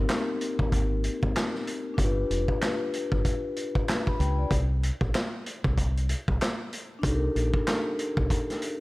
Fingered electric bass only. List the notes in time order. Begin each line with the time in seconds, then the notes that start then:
0.59 G#1
1.23 G#1
1.98 G1
2.30 F1
3.12 G1
4.20 C#2
4.51 C2
5.01 A#1
5.65 C2
6.28 C2
7.04 C2
7.35 A#1
8.17 C2